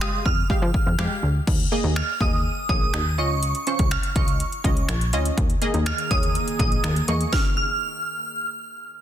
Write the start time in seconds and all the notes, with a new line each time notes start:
0.01 G#3 G4 F5 D#6, finger snap
0.26 F2 F6, kick
0.50 F3 G#3 G4 F5, kick
0.62 F3
0.74 kick
0.86 F2
0.99 F2 G#3 G4 F5, finger snap
1.23 D2
1.47 D#2, kick, crash
1.72 A#3 G#4 D#5
1.84 D#2
1.96 F6, finger snap
2.20 D#2 A#3 G#4 D#5 D#6, kick
2.69 A#1 A#3 G#4 C#5 D#6, kick
2.94 D#2, finger snap
3.18 C#2 C#4 F4 D#5 C#6
3.43 closed hi-hat
3.55 closed hi-hat
3.67 C#4 F4 C5 C#6, closed hi-hat
3.79 C#2, kick, closed hi-hat
3.91 F6, finger snap, closed hi-hat
4.03 closed hi-hat
4.16 C#2 C#4 F4 D#5 C#6, kick, closed hi-hat
4.28 closed hi-hat
4.40 closed hi-hat
4.52 closed hi-hat
4.64 C#2 C#4 F4 D#5, kick, closed hi-hat
4.77 closed hi-hat
4.89 A#1, finger snap, closed hi-hat
5.01 closed hi-hat
5.13 D2 C#4 F4 D#5, closed hi-hat
5.25 closed hi-hat
5.38 D#2 D#3 A#3 G#4, kick, closed hi-hat
5.50 closed hi-hat
5.62 A#3 G#4 D#5, closed hi-hat
5.74 D#2, closed hi-hat
5.86 F6, finger snap, closed hi-hat
5.98 closed hi-hat
6.11 D#2 A#3 G#4 C#5 D#6, kick, closed hi-hat
6.23 closed hi-hat
6.35 closed hi-hat
6.48 closed hi-hat
6.59 A#1 A#3 G#4 D#5 D#6, kick, closed hi-hat
6.72 closed hi-hat
6.84 D#2, finger snap, closed hi-hat
6.96 closed hi-hat
7.08 E2 A#3 G#4 D#5 C#6, closed hi-hat
7.21 closed hi-hat
7.32 F6, kick, snare
7.57 F6